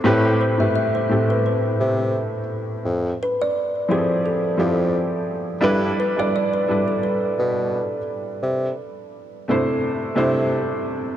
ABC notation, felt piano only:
X:1
M:4/4
L:1/16
Q:"Swing 16ths" 1/4=86
K:Gmix
V:1 name="Felt piano"
[A,,A,CGB]3 [A,,A,CGB]3 [A,,A,CGA]6- [A,,A,CGA] z3 | z6 [F,CEG_A=A]4 [F,CEGA]4- [F,CEGA] z | [G,DEAB]3 [G,DEAd]3 [G,DEAB]6- [G,DEAB] z3 | z6 [C,A,DEc]4 [C,A,DEc]4- [C,A,DEc] z |]